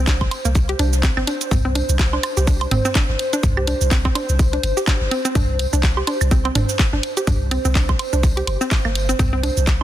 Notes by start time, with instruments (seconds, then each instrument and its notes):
Already playing: sub bass C2, ambient pad C5
0.07 synth arpeggio sound D4, kick, snare, clap, tambourine, shaker
0.21 kick, low woodblock
0.31 closed hi-hat, tambourine, low woodblock
0.45 sub bass C2, synth arpeggio sound A#3, shaker
0.55 kick, tambourine, shaker
0.69 synth arpeggio sound G4, closed hi-hat
0.79 sub bass C2, synth arpeggio sound D4, closed hi-hat, tambourine
0.93 snare, shaker
1.03 synth arpeggio sound C4, kick, snare, clap, tambourine, shaker
1.17 sub bass G1, synth arpeggio sound C4, snare, high woodblock
1.27 synth arpeggio sound D4, closed hi-hat, tambourine
1.41 closed hi-hat, shaker
1.51 sub bass C2, synth arpeggio sound C4, kick, mid tom, tambourine, shaker
1.65 synth arpeggio sound C4
1.75 synth arpeggio sound D4, closed hi-hat, tambourine
1.89 sub bass C2, shaker
1.99 kick, snare, clap, tambourine, shaker
2.13 synth arpeggio sound D4, low woodblock
2.23 closed hi-hat, tambourine, high woodblock, low woodblock
2.37 sub bass C2, synth arpeggio sound G4, shaker
2.47 synth arpeggio sound D4, kick, tambourine, shaker
2.61 closed hi-hat, low woodblock
2.71 sub bass G1, synth arpeggio sound C4, closed hi-hat, mid tom, tambourine
2.85 synth arpeggio sound C4, snare, shaker
2.95 synth arpeggio sound D4, kick, snare, clap, tambourine, shaker
3.09 sub bass G1, snare
3.19 closed hi-hat, tambourine
3.33 synth arpeggio sound D4, closed hi-hat, shaker
3.43 sub bass C2, kick, mid tom, tambourine, shaker
3.57 synth arpeggio sound G4, high woodblock
3.67 synth arpeggio sound D4, closed hi-hat, tambourine
3.81 sub bass C2, closed hi-hat, shaker
3.91 synth arpeggio sound C4, kick, snare, clap, tambourine, shaker
4.05 synth arpeggio sound C4, kick, low woodblock
4.15 synth arpeggio sound D4, closed hi-hat, tambourine, low woodblock
4.29 sub bass C2, shaker
4.39 kick, tambourine, shaker
4.53 synth arpeggio sound D4, closed hi-hat
4.63 sub bass G1, closed hi-hat, tambourine
4.77 synth arpeggio sound G4, snare, shaker
4.87 synth arpeggio sound D4, kick, snare, clap, tambourine, high woodblock, shaker
5.01 sub bass G1, snare
5.11 synth arpeggio sound C4, closed hi-hat, tambourine
5.25 synth arpeggio sound C4, closed hi-hat, shaker
5.35 sub bass C2, synth arpeggio sound D4, kick, mid tom, tambourine, shaker
5.59 closed hi-hat, tambourine
5.73 sub bass C2, synth arpeggio sound D4, shaker
5.83 kick, snare, clap, tambourine, shaker
5.97 synth arpeggio sound G4, low woodblock
6.07 synth arpeggio sound D4, closed hi-hat, tambourine, low woodblock
6.21 sub bass C2, high woodblock, shaker
6.31 synth arpeggio sound C4, kick, tambourine, shaker
6.45 synth arpeggio sound C4, closed hi-hat, low woodblock
6.55 sub bass G1, synth arpeggio sound D4, closed hi-hat, mid tom, tambourine
6.69 snare, shaker
6.79 kick, snare, clap, tambourine, shaker
6.93 sub bass G1, synth arpeggio sound D4, snare
7.03 closed hi-hat, tambourine
7.17 synth arpeggio sound G4, closed hi-hat, shaker
7.27 sub bass C2, synth arpeggio sound D4, kick, mid tom, tambourine, shaker
7.51 synth arpeggio sound C4, closed hi-hat, tambourine, high woodblock
7.65 sub bass C2, synth arpeggio sound C4, closed hi-hat, shaker
7.75 synth arpeggio sound D4, kick, snare, clap, tambourine, shaker
7.89 kick, low woodblock
7.99 closed hi-hat, tambourine, low woodblock
8.13 sub bass C2, synth arpeggio sound D4, shaker
8.23 kick, tambourine, shaker
8.37 synth arpeggio sound G4, closed hi-hat
8.47 sub bass G1, closed hi-hat, tambourine, low woodblock
8.61 synth arpeggio sound C4, snare, shaker
8.71 kick, snare, clap, tambourine, shaker
8.85 sub bass G1, synth arpeggio sound A#3, snare, high woodblock
8.95 closed hi-hat, tambourine
9.09 synth arpeggio sound C4, closed hi-hat, shaker
9.19 sub bass C2, synth arpeggio sound C4, kick, mid tom, tambourine, shaker
9.33 synth arpeggio sound C4
9.43 synth arpeggio sound D4, closed hi-hat, tambourine
9.57 sub bass C2, shaker
9.67 kick, snare, clap, tambourine, shaker